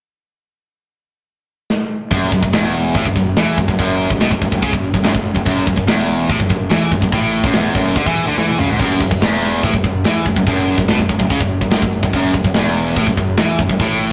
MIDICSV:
0, 0, Header, 1, 4, 480
1, 0, Start_track
1, 0, Key_signature, 3, "minor"
1, 0, Tempo, 417246
1, 514, Time_signature, 4, 2, 24, 8
1, 16248, End_track
2, 0, Start_track
2, 0, Title_t, "Distorted electric guitar"
2, 0, Program_c, 0, 30
2, 2429, Note_on_c, 0, 42, 100
2, 2665, Note_off_c, 0, 42, 0
2, 2683, Note_on_c, 0, 42, 69
2, 2783, Note_off_c, 0, 42, 0
2, 2797, Note_on_c, 0, 42, 72
2, 2905, Note_off_c, 0, 42, 0
2, 2909, Note_on_c, 0, 40, 99
2, 3386, Note_off_c, 0, 40, 0
2, 3393, Note_on_c, 0, 45, 101
2, 3508, Note_off_c, 0, 45, 0
2, 3535, Note_on_c, 0, 42, 67
2, 3627, Note_off_c, 0, 42, 0
2, 3641, Note_on_c, 0, 42, 68
2, 3831, Note_off_c, 0, 42, 0
2, 3877, Note_on_c, 0, 52, 106
2, 4110, Note_off_c, 0, 52, 0
2, 4120, Note_on_c, 0, 42, 85
2, 4238, Note_off_c, 0, 42, 0
2, 4250, Note_on_c, 0, 42, 76
2, 4347, Note_off_c, 0, 42, 0
2, 4361, Note_on_c, 0, 42, 116
2, 4708, Note_off_c, 0, 42, 0
2, 4722, Note_on_c, 0, 42, 75
2, 4838, Note_on_c, 0, 47, 107
2, 4839, Note_off_c, 0, 42, 0
2, 4950, Note_off_c, 0, 47, 0
2, 4966, Note_on_c, 0, 42, 68
2, 5076, Note_off_c, 0, 42, 0
2, 5089, Note_on_c, 0, 42, 69
2, 5190, Note_off_c, 0, 42, 0
2, 5203, Note_on_c, 0, 42, 65
2, 5320, Note_off_c, 0, 42, 0
2, 5320, Note_on_c, 0, 49, 105
2, 5431, Note_off_c, 0, 49, 0
2, 5450, Note_on_c, 0, 42, 66
2, 5635, Note_off_c, 0, 42, 0
2, 5692, Note_on_c, 0, 42, 72
2, 5778, Note_off_c, 0, 42, 0
2, 5792, Note_on_c, 0, 42, 117
2, 5888, Note_off_c, 0, 42, 0
2, 5902, Note_on_c, 0, 42, 66
2, 6101, Note_off_c, 0, 42, 0
2, 6150, Note_on_c, 0, 42, 75
2, 6262, Note_off_c, 0, 42, 0
2, 6276, Note_on_c, 0, 42, 97
2, 6509, Note_off_c, 0, 42, 0
2, 6522, Note_on_c, 0, 42, 64
2, 6615, Note_off_c, 0, 42, 0
2, 6629, Note_on_c, 0, 42, 69
2, 6753, Note_off_c, 0, 42, 0
2, 6757, Note_on_c, 0, 40, 105
2, 7230, Note_off_c, 0, 40, 0
2, 7245, Note_on_c, 0, 45, 105
2, 7354, Note_off_c, 0, 45, 0
2, 7355, Note_on_c, 0, 42, 75
2, 7456, Note_off_c, 0, 42, 0
2, 7470, Note_on_c, 0, 42, 71
2, 7666, Note_off_c, 0, 42, 0
2, 7706, Note_on_c, 0, 52, 116
2, 7945, Note_off_c, 0, 52, 0
2, 7963, Note_on_c, 0, 42, 81
2, 8080, Note_off_c, 0, 42, 0
2, 8095, Note_on_c, 0, 42, 75
2, 8206, Note_off_c, 0, 42, 0
2, 8211, Note_on_c, 0, 45, 112
2, 8557, Note_off_c, 0, 45, 0
2, 8569, Note_on_c, 0, 42, 86
2, 8676, Note_off_c, 0, 42, 0
2, 8681, Note_on_c, 0, 40, 94
2, 8905, Note_off_c, 0, 40, 0
2, 8910, Note_on_c, 0, 42, 88
2, 9146, Note_off_c, 0, 42, 0
2, 9163, Note_on_c, 0, 50, 92
2, 9273, Note_off_c, 0, 50, 0
2, 9281, Note_on_c, 0, 52, 88
2, 9504, Note_off_c, 0, 52, 0
2, 9508, Note_on_c, 0, 50, 99
2, 9626, Note_off_c, 0, 50, 0
2, 9640, Note_on_c, 0, 52, 107
2, 9871, Note_off_c, 0, 52, 0
2, 9884, Note_on_c, 0, 49, 112
2, 9994, Note_off_c, 0, 49, 0
2, 10005, Note_on_c, 0, 44, 88
2, 10114, Note_off_c, 0, 44, 0
2, 10124, Note_on_c, 0, 42, 101
2, 10353, Note_off_c, 0, 42, 0
2, 10379, Note_on_c, 0, 42, 68
2, 10467, Note_off_c, 0, 42, 0
2, 10481, Note_on_c, 0, 42, 65
2, 10614, Note_off_c, 0, 42, 0
2, 10614, Note_on_c, 0, 40, 95
2, 11078, Note_off_c, 0, 40, 0
2, 11088, Note_on_c, 0, 45, 101
2, 11195, Note_off_c, 0, 45, 0
2, 11203, Note_on_c, 0, 42, 61
2, 11308, Note_off_c, 0, 42, 0
2, 11322, Note_on_c, 0, 42, 61
2, 11511, Note_off_c, 0, 42, 0
2, 11560, Note_on_c, 0, 52, 99
2, 11791, Note_off_c, 0, 52, 0
2, 11804, Note_on_c, 0, 42, 74
2, 11916, Note_off_c, 0, 42, 0
2, 11930, Note_on_c, 0, 42, 77
2, 12043, Note_off_c, 0, 42, 0
2, 12057, Note_on_c, 0, 42, 101
2, 12400, Note_off_c, 0, 42, 0
2, 12415, Note_on_c, 0, 42, 62
2, 12520, Note_on_c, 0, 47, 95
2, 12526, Note_off_c, 0, 42, 0
2, 12631, Note_off_c, 0, 47, 0
2, 12645, Note_on_c, 0, 42, 70
2, 12746, Note_off_c, 0, 42, 0
2, 12760, Note_on_c, 0, 42, 69
2, 12861, Note_off_c, 0, 42, 0
2, 12875, Note_on_c, 0, 42, 77
2, 12996, Note_off_c, 0, 42, 0
2, 13000, Note_on_c, 0, 49, 94
2, 13111, Note_off_c, 0, 49, 0
2, 13116, Note_on_c, 0, 42, 68
2, 13308, Note_off_c, 0, 42, 0
2, 13360, Note_on_c, 0, 42, 75
2, 13454, Note_off_c, 0, 42, 0
2, 13468, Note_on_c, 0, 42, 112
2, 13577, Note_off_c, 0, 42, 0
2, 13591, Note_on_c, 0, 42, 75
2, 13785, Note_off_c, 0, 42, 0
2, 13839, Note_on_c, 0, 42, 79
2, 13957, Note_off_c, 0, 42, 0
2, 13974, Note_on_c, 0, 42, 107
2, 14186, Note_off_c, 0, 42, 0
2, 14200, Note_on_c, 0, 42, 63
2, 14312, Note_off_c, 0, 42, 0
2, 14326, Note_on_c, 0, 42, 67
2, 14441, Note_off_c, 0, 42, 0
2, 14451, Note_on_c, 0, 40, 106
2, 14916, Note_off_c, 0, 40, 0
2, 14925, Note_on_c, 0, 45, 102
2, 15033, Note_off_c, 0, 45, 0
2, 15039, Note_on_c, 0, 42, 66
2, 15147, Note_off_c, 0, 42, 0
2, 15161, Note_on_c, 0, 42, 65
2, 15350, Note_off_c, 0, 42, 0
2, 15392, Note_on_c, 0, 52, 116
2, 15626, Note_off_c, 0, 52, 0
2, 15633, Note_on_c, 0, 42, 78
2, 15754, Note_off_c, 0, 42, 0
2, 15766, Note_on_c, 0, 42, 75
2, 15880, Note_off_c, 0, 42, 0
2, 15886, Note_on_c, 0, 45, 106
2, 16233, Note_off_c, 0, 45, 0
2, 16248, End_track
3, 0, Start_track
3, 0, Title_t, "Fingered electric bass"
3, 0, Program_c, 1, 33
3, 2424, Note_on_c, 1, 30, 83
3, 2653, Note_off_c, 1, 30, 0
3, 2664, Note_on_c, 1, 30, 71
3, 2781, Note_off_c, 1, 30, 0
3, 2794, Note_on_c, 1, 30, 78
3, 2899, Note_off_c, 1, 30, 0
3, 2906, Note_on_c, 1, 28, 91
3, 3357, Note_off_c, 1, 28, 0
3, 3390, Note_on_c, 1, 33, 74
3, 3505, Note_off_c, 1, 33, 0
3, 3516, Note_on_c, 1, 30, 67
3, 3622, Note_off_c, 1, 30, 0
3, 3629, Note_on_c, 1, 30, 78
3, 3855, Note_off_c, 1, 30, 0
3, 3865, Note_on_c, 1, 40, 91
3, 4094, Note_off_c, 1, 40, 0
3, 4114, Note_on_c, 1, 30, 74
3, 4227, Note_off_c, 1, 30, 0
3, 4236, Note_on_c, 1, 30, 84
3, 4348, Note_off_c, 1, 30, 0
3, 4358, Note_on_c, 1, 30, 90
3, 4692, Note_off_c, 1, 30, 0
3, 4721, Note_on_c, 1, 30, 78
3, 4810, Note_off_c, 1, 30, 0
3, 4817, Note_on_c, 1, 35, 100
3, 4938, Note_off_c, 1, 35, 0
3, 4956, Note_on_c, 1, 30, 80
3, 5068, Note_off_c, 1, 30, 0
3, 5079, Note_on_c, 1, 30, 82
3, 5190, Note_off_c, 1, 30, 0
3, 5200, Note_on_c, 1, 30, 83
3, 5310, Note_off_c, 1, 30, 0
3, 5319, Note_on_c, 1, 37, 85
3, 5430, Note_off_c, 1, 37, 0
3, 5440, Note_on_c, 1, 30, 80
3, 5662, Note_off_c, 1, 30, 0
3, 5677, Note_on_c, 1, 30, 74
3, 5789, Note_off_c, 1, 30, 0
3, 5798, Note_on_c, 1, 30, 100
3, 5909, Note_off_c, 1, 30, 0
3, 5923, Note_on_c, 1, 30, 74
3, 6143, Note_off_c, 1, 30, 0
3, 6166, Note_on_c, 1, 30, 87
3, 6273, Note_off_c, 1, 30, 0
3, 6283, Note_on_c, 1, 30, 79
3, 6504, Note_off_c, 1, 30, 0
3, 6525, Note_on_c, 1, 30, 81
3, 6633, Note_off_c, 1, 30, 0
3, 6643, Note_on_c, 1, 30, 73
3, 6740, Note_off_c, 1, 30, 0
3, 6747, Note_on_c, 1, 28, 100
3, 7198, Note_off_c, 1, 28, 0
3, 7238, Note_on_c, 1, 33, 78
3, 7349, Note_off_c, 1, 33, 0
3, 7363, Note_on_c, 1, 30, 78
3, 7468, Note_off_c, 1, 30, 0
3, 7475, Note_on_c, 1, 30, 77
3, 7699, Note_off_c, 1, 30, 0
3, 7713, Note_on_c, 1, 40, 92
3, 7938, Note_off_c, 1, 40, 0
3, 7955, Note_on_c, 1, 30, 82
3, 8068, Note_off_c, 1, 30, 0
3, 8076, Note_on_c, 1, 30, 84
3, 8188, Note_off_c, 1, 30, 0
3, 8196, Note_on_c, 1, 33, 89
3, 8532, Note_off_c, 1, 33, 0
3, 8554, Note_on_c, 1, 30, 99
3, 8667, Note_off_c, 1, 30, 0
3, 8675, Note_on_c, 1, 28, 96
3, 8899, Note_off_c, 1, 28, 0
3, 8912, Note_on_c, 1, 30, 89
3, 9138, Note_off_c, 1, 30, 0
3, 9151, Note_on_c, 1, 38, 86
3, 9266, Note_off_c, 1, 38, 0
3, 9274, Note_on_c, 1, 40, 93
3, 9499, Note_off_c, 1, 40, 0
3, 9514, Note_on_c, 1, 38, 76
3, 9627, Note_off_c, 1, 38, 0
3, 9634, Note_on_c, 1, 40, 94
3, 9859, Note_off_c, 1, 40, 0
3, 9879, Note_on_c, 1, 37, 94
3, 9986, Note_off_c, 1, 37, 0
3, 9992, Note_on_c, 1, 32, 94
3, 10106, Note_off_c, 1, 32, 0
3, 10118, Note_on_c, 1, 30, 89
3, 10341, Note_off_c, 1, 30, 0
3, 10360, Note_on_c, 1, 30, 85
3, 10470, Note_off_c, 1, 30, 0
3, 10480, Note_on_c, 1, 30, 69
3, 10579, Note_off_c, 1, 30, 0
3, 10585, Note_on_c, 1, 28, 94
3, 11037, Note_off_c, 1, 28, 0
3, 11081, Note_on_c, 1, 33, 78
3, 11191, Note_off_c, 1, 33, 0
3, 11200, Note_on_c, 1, 30, 79
3, 11310, Note_off_c, 1, 30, 0
3, 11319, Note_on_c, 1, 30, 75
3, 11541, Note_off_c, 1, 30, 0
3, 11555, Note_on_c, 1, 40, 95
3, 11779, Note_off_c, 1, 40, 0
3, 11803, Note_on_c, 1, 30, 78
3, 11912, Note_off_c, 1, 30, 0
3, 11922, Note_on_c, 1, 30, 83
3, 12031, Note_off_c, 1, 30, 0
3, 12041, Note_on_c, 1, 30, 97
3, 12374, Note_off_c, 1, 30, 0
3, 12398, Note_on_c, 1, 30, 74
3, 12509, Note_off_c, 1, 30, 0
3, 12517, Note_on_c, 1, 35, 98
3, 12628, Note_off_c, 1, 35, 0
3, 12642, Note_on_c, 1, 30, 75
3, 12751, Note_off_c, 1, 30, 0
3, 12760, Note_on_c, 1, 30, 87
3, 12870, Note_off_c, 1, 30, 0
3, 12880, Note_on_c, 1, 30, 83
3, 12990, Note_off_c, 1, 30, 0
3, 12998, Note_on_c, 1, 37, 82
3, 13109, Note_off_c, 1, 37, 0
3, 13120, Note_on_c, 1, 30, 83
3, 13342, Note_off_c, 1, 30, 0
3, 13360, Note_on_c, 1, 30, 72
3, 13466, Note_off_c, 1, 30, 0
3, 13473, Note_on_c, 1, 30, 97
3, 13586, Note_off_c, 1, 30, 0
3, 13598, Note_on_c, 1, 30, 70
3, 13820, Note_off_c, 1, 30, 0
3, 13837, Note_on_c, 1, 30, 85
3, 13948, Note_off_c, 1, 30, 0
3, 13958, Note_on_c, 1, 30, 80
3, 14181, Note_off_c, 1, 30, 0
3, 14196, Note_on_c, 1, 30, 76
3, 14304, Note_off_c, 1, 30, 0
3, 14311, Note_on_c, 1, 30, 81
3, 14425, Note_off_c, 1, 30, 0
3, 14432, Note_on_c, 1, 28, 101
3, 14880, Note_off_c, 1, 28, 0
3, 14908, Note_on_c, 1, 33, 81
3, 15023, Note_off_c, 1, 33, 0
3, 15033, Note_on_c, 1, 30, 76
3, 15146, Note_off_c, 1, 30, 0
3, 15151, Note_on_c, 1, 30, 79
3, 15376, Note_off_c, 1, 30, 0
3, 15394, Note_on_c, 1, 40, 90
3, 15617, Note_off_c, 1, 40, 0
3, 15633, Note_on_c, 1, 30, 79
3, 15741, Note_off_c, 1, 30, 0
3, 15748, Note_on_c, 1, 30, 81
3, 15863, Note_off_c, 1, 30, 0
3, 15870, Note_on_c, 1, 33, 84
3, 16207, Note_off_c, 1, 33, 0
3, 16248, End_track
4, 0, Start_track
4, 0, Title_t, "Drums"
4, 1956, Note_on_c, 9, 38, 68
4, 2071, Note_off_c, 9, 38, 0
4, 2430, Note_on_c, 9, 36, 105
4, 2434, Note_on_c, 9, 46, 81
4, 2545, Note_off_c, 9, 36, 0
4, 2549, Note_off_c, 9, 46, 0
4, 2668, Note_on_c, 9, 46, 52
4, 2670, Note_on_c, 9, 36, 78
4, 2783, Note_off_c, 9, 46, 0
4, 2785, Note_off_c, 9, 36, 0
4, 2791, Note_on_c, 9, 36, 83
4, 2906, Note_off_c, 9, 36, 0
4, 2914, Note_on_c, 9, 46, 74
4, 2916, Note_on_c, 9, 38, 105
4, 3029, Note_off_c, 9, 46, 0
4, 3031, Note_off_c, 9, 38, 0
4, 3040, Note_on_c, 9, 38, 31
4, 3148, Note_on_c, 9, 46, 62
4, 3155, Note_off_c, 9, 38, 0
4, 3263, Note_off_c, 9, 46, 0
4, 3392, Note_on_c, 9, 46, 85
4, 3393, Note_on_c, 9, 36, 104
4, 3507, Note_off_c, 9, 46, 0
4, 3508, Note_off_c, 9, 36, 0
4, 3513, Note_on_c, 9, 36, 78
4, 3628, Note_off_c, 9, 36, 0
4, 3632, Note_on_c, 9, 46, 54
4, 3633, Note_on_c, 9, 36, 77
4, 3747, Note_off_c, 9, 46, 0
4, 3748, Note_off_c, 9, 36, 0
4, 3873, Note_on_c, 9, 46, 75
4, 3875, Note_on_c, 9, 38, 104
4, 3988, Note_off_c, 9, 46, 0
4, 3990, Note_off_c, 9, 38, 0
4, 4115, Note_on_c, 9, 36, 93
4, 4117, Note_on_c, 9, 46, 56
4, 4230, Note_off_c, 9, 36, 0
4, 4232, Note_off_c, 9, 46, 0
4, 4235, Note_on_c, 9, 36, 78
4, 4350, Note_off_c, 9, 36, 0
4, 4358, Note_on_c, 9, 36, 101
4, 4363, Note_on_c, 9, 46, 71
4, 4473, Note_off_c, 9, 36, 0
4, 4478, Note_off_c, 9, 46, 0
4, 4603, Note_on_c, 9, 46, 56
4, 4718, Note_off_c, 9, 46, 0
4, 4720, Note_on_c, 9, 36, 104
4, 4835, Note_off_c, 9, 36, 0
4, 4840, Note_on_c, 9, 46, 70
4, 4842, Note_on_c, 9, 38, 98
4, 4955, Note_off_c, 9, 46, 0
4, 4958, Note_off_c, 9, 38, 0
4, 4959, Note_on_c, 9, 36, 93
4, 5075, Note_off_c, 9, 36, 0
4, 5081, Note_on_c, 9, 36, 88
4, 5086, Note_on_c, 9, 46, 61
4, 5196, Note_off_c, 9, 36, 0
4, 5201, Note_off_c, 9, 46, 0
4, 5201, Note_on_c, 9, 36, 81
4, 5316, Note_off_c, 9, 36, 0
4, 5322, Note_on_c, 9, 36, 99
4, 5325, Note_on_c, 9, 46, 76
4, 5437, Note_off_c, 9, 36, 0
4, 5440, Note_off_c, 9, 46, 0
4, 5443, Note_on_c, 9, 36, 81
4, 5558, Note_off_c, 9, 36, 0
4, 5568, Note_on_c, 9, 46, 51
4, 5681, Note_on_c, 9, 36, 86
4, 5683, Note_off_c, 9, 46, 0
4, 5796, Note_off_c, 9, 36, 0
4, 5802, Note_on_c, 9, 46, 76
4, 5805, Note_on_c, 9, 38, 105
4, 5917, Note_off_c, 9, 46, 0
4, 5920, Note_off_c, 9, 38, 0
4, 5921, Note_on_c, 9, 36, 86
4, 5924, Note_on_c, 9, 38, 35
4, 6036, Note_off_c, 9, 36, 0
4, 6039, Note_off_c, 9, 38, 0
4, 6045, Note_on_c, 9, 46, 54
4, 6160, Note_off_c, 9, 46, 0
4, 6164, Note_on_c, 9, 36, 76
4, 6279, Note_off_c, 9, 36, 0
4, 6284, Note_on_c, 9, 36, 95
4, 6285, Note_on_c, 9, 46, 79
4, 6399, Note_off_c, 9, 36, 0
4, 6400, Note_off_c, 9, 46, 0
4, 6524, Note_on_c, 9, 36, 90
4, 6526, Note_on_c, 9, 46, 55
4, 6639, Note_off_c, 9, 36, 0
4, 6641, Note_off_c, 9, 46, 0
4, 6644, Note_on_c, 9, 36, 86
4, 6759, Note_off_c, 9, 36, 0
4, 6766, Note_on_c, 9, 46, 69
4, 6768, Note_on_c, 9, 38, 98
4, 6881, Note_off_c, 9, 46, 0
4, 6883, Note_off_c, 9, 38, 0
4, 7006, Note_on_c, 9, 46, 60
4, 7121, Note_off_c, 9, 46, 0
4, 7241, Note_on_c, 9, 36, 101
4, 7241, Note_on_c, 9, 46, 82
4, 7356, Note_off_c, 9, 36, 0
4, 7356, Note_off_c, 9, 46, 0
4, 7361, Note_on_c, 9, 36, 80
4, 7476, Note_off_c, 9, 36, 0
4, 7481, Note_on_c, 9, 36, 84
4, 7486, Note_on_c, 9, 46, 57
4, 7596, Note_off_c, 9, 36, 0
4, 7601, Note_off_c, 9, 46, 0
4, 7721, Note_on_c, 9, 46, 87
4, 7723, Note_on_c, 9, 38, 110
4, 7836, Note_off_c, 9, 46, 0
4, 7838, Note_off_c, 9, 38, 0
4, 7958, Note_on_c, 9, 36, 82
4, 7960, Note_on_c, 9, 46, 60
4, 8073, Note_off_c, 9, 36, 0
4, 8075, Note_off_c, 9, 46, 0
4, 8077, Note_on_c, 9, 36, 85
4, 8192, Note_off_c, 9, 36, 0
4, 8193, Note_on_c, 9, 46, 79
4, 8195, Note_on_c, 9, 36, 103
4, 8308, Note_off_c, 9, 46, 0
4, 8310, Note_off_c, 9, 36, 0
4, 8437, Note_on_c, 9, 46, 64
4, 8552, Note_off_c, 9, 46, 0
4, 8556, Note_on_c, 9, 36, 117
4, 8668, Note_on_c, 9, 46, 71
4, 8671, Note_off_c, 9, 36, 0
4, 8671, Note_on_c, 9, 38, 98
4, 8783, Note_off_c, 9, 46, 0
4, 8786, Note_off_c, 9, 38, 0
4, 8793, Note_on_c, 9, 38, 29
4, 8908, Note_off_c, 9, 38, 0
4, 8913, Note_on_c, 9, 46, 57
4, 8915, Note_on_c, 9, 36, 108
4, 9028, Note_off_c, 9, 46, 0
4, 9030, Note_off_c, 9, 36, 0
4, 9156, Note_on_c, 9, 36, 101
4, 9158, Note_on_c, 9, 46, 75
4, 9271, Note_off_c, 9, 36, 0
4, 9273, Note_off_c, 9, 46, 0
4, 9276, Note_on_c, 9, 36, 74
4, 9391, Note_off_c, 9, 36, 0
4, 9400, Note_on_c, 9, 46, 54
4, 9515, Note_off_c, 9, 46, 0
4, 9641, Note_on_c, 9, 38, 59
4, 9756, Note_off_c, 9, 38, 0
4, 9766, Note_on_c, 9, 48, 68
4, 9881, Note_off_c, 9, 48, 0
4, 9881, Note_on_c, 9, 45, 88
4, 9996, Note_off_c, 9, 45, 0
4, 10000, Note_on_c, 9, 43, 87
4, 10115, Note_off_c, 9, 43, 0
4, 10118, Note_on_c, 9, 36, 99
4, 10123, Note_on_c, 9, 49, 98
4, 10233, Note_off_c, 9, 36, 0
4, 10238, Note_off_c, 9, 49, 0
4, 10359, Note_on_c, 9, 36, 84
4, 10360, Note_on_c, 9, 46, 58
4, 10474, Note_off_c, 9, 36, 0
4, 10475, Note_off_c, 9, 46, 0
4, 10481, Note_on_c, 9, 36, 91
4, 10596, Note_off_c, 9, 36, 0
4, 10606, Note_on_c, 9, 46, 77
4, 10608, Note_on_c, 9, 38, 103
4, 10721, Note_off_c, 9, 46, 0
4, 10723, Note_off_c, 9, 38, 0
4, 10846, Note_on_c, 9, 46, 63
4, 10961, Note_off_c, 9, 46, 0
4, 11082, Note_on_c, 9, 36, 99
4, 11086, Note_on_c, 9, 46, 74
4, 11197, Note_off_c, 9, 36, 0
4, 11200, Note_on_c, 9, 36, 84
4, 11201, Note_off_c, 9, 46, 0
4, 11315, Note_off_c, 9, 36, 0
4, 11319, Note_on_c, 9, 36, 82
4, 11319, Note_on_c, 9, 46, 57
4, 11434, Note_off_c, 9, 46, 0
4, 11435, Note_off_c, 9, 36, 0
4, 11563, Note_on_c, 9, 46, 80
4, 11565, Note_on_c, 9, 38, 98
4, 11678, Note_off_c, 9, 46, 0
4, 11680, Note_off_c, 9, 38, 0
4, 11801, Note_on_c, 9, 36, 81
4, 11806, Note_on_c, 9, 46, 57
4, 11917, Note_off_c, 9, 36, 0
4, 11921, Note_off_c, 9, 46, 0
4, 11923, Note_on_c, 9, 36, 83
4, 12038, Note_off_c, 9, 36, 0
4, 12041, Note_on_c, 9, 36, 92
4, 12045, Note_on_c, 9, 46, 82
4, 12156, Note_off_c, 9, 36, 0
4, 12160, Note_off_c, 9, 46, 0
4, 12278, Note_on_c, 9, 46, 56
4, 12393, Note_off_c, 9, 46, 0
4, 12401, Note_on_c, 9, 36, 92
4, 12516, Note_off_c, 9, 36, 0
4, 12521, Note_on_c, 9, 46, 73
4, 12523, Note_on_c, 9, 38, 110
4, 12636, Note_off_c, 9, 46, 0
4, 12639, Note_off_c, 9, 38, 0
4, 12643, Note_on_c, 9, 36, 81
4, 12652, Note_on_c, 9, 38, 34
4, 12758, Note_off_c, 9, 36, 0
4, 12761, Note_on_c, 9, 36, 84
4, 12765, Note_on_c, 9, 46, 58
4, 12767, Note_off_c, 9, 38, 0
4, 12876, Note_off_c, 9, 36, 0
4, 12880, Note_off_c, 9, 46, 0
4, 12881, Note_on_c, 9, 36, 77
4, 12996, Note_off_c, 9, 36, 0
4, 13002, Note_on_c, 9, 46, 69
4, 13003, Note_on_c, 9, 36, 87
4, 13117, Note_off_c, 9, 46, 0
4, 13118, Note_off_c, 9, 36, 0
4, 13122, Note_on_c, 9, 36, 81
4, 13237, Note_off_c, 9, 36, 0
4, 13242, Note_on_c, 9, 46, 50
4, 13357, Note_off_c, 9, 46, 0
4, 13359, Note_on_c, 9, 36, 78
4, 13474, Note_off_c, 9, 36, 0
4, 13475, Note_on_c, 9, 46, 71
4, 13478, Note_on_c, 9, 38, 108
4, 13590, Note_off_c, 9, 46, 0
4, 13593, Note_off_c, 9, 38, 0
4, 13596, Note_on_c, 9, 38, 33
4, 13599, Note_on_c, 9, 36, 102
4, 13712, Note_off_c, 9, 38, 0
4, 13714, Note_off_c, 9, 36, 0
4, 13723, Note_on_c, 9, 46, 48
4, 13838, Note_off_c, 9, 46, 0
4, 13839, Note_on_c, 9, 36, 89
4, 13954, Note_off_c, 9, 36, 0
4, 13954, Note_on_c, 9, 46, 75
4, 13958, Note_on_c, 9, 36, 96
4, 14069, Note_off_c, 9, 46, 0
4, 14074, Note_off_c, 9, 36, 0
4, 14192, Note_on_c, 9, 46, 54
4, 14197, Note_on_c, 9, 36, 87
4, 14307, Note_off_c, 9, 46, 0
4, 14312, Note_off_c, 9, 36, 0
4, 14316, Note_on_c, 9, 36, 93
4, 14428, Note_on_c, 9, 46, 68
4, 14431, Note_off_c, 9, 36, 0
4, 14431, Note_on_c, 9, 38, 101
4, 14543, Note_off_c, 9, 46, 0
4, 14546, Note_off_c, 9, 38, 0
4, 14556, Note_on_c, 9, 38, 35
4, 14666, Note_on_c, 9, 46, 61
4, 14671, Note_off_c, 9, 38, 0
4, 14781, Note_off_c, 9, 46, 0
4, 14909, Note_on_c, 9, 46, 72
4, 14915, Note_on_c, 9, 36, 104
4, 15024, Note_off_c, 9, 46, 0
4, 15030, Note_off_c, 9, 36, 0
4, 15034, Note_on_c, 9, 36, 85
4, 15149, Note_off_c, 9, 36, 0
4, 15154, Note_on_c, 9, 46, 55
4, 15155, Note_on_c, 9, 36, 80
4, 15269, Note_off_c, 9, 46, 0
4, 15270, Note_off_c, 9, 36, 0
4, 15386, Note_on_c, 9, 46, 67
4, 15388, Note_on_c, 9, 38, 107
4, 15501, Note_off_c, 9, 46, 0
4, 15503, Note_off_c, 9, 38, 0
4, 15629, Note_on_c, 9, 46, 57
4, 15633, Note_on_c, 9, 36, 90
4, 15744, Note_off_c, 9, 46, 0
4, 15748, Note_off_c, 9, 36, 0
4, 15753, Note_on_c, 9, 36, 77
4, 15868, Note_off_c, 9, 36, 0
4, 15870, Note_on_c, 9, 46, 78
4, 15873, Note_on_c, 9, 36, 86
4, 15985, Note_off_c, 9, 46, 0
4, 15988, Note_off_c, 9, 36, 0
4, 16107, Note_on_c, 9, 46, 58
4, 16222, Note_off_c, 9, 46, 0
4, 16248, End_track
0, 0, End_of_file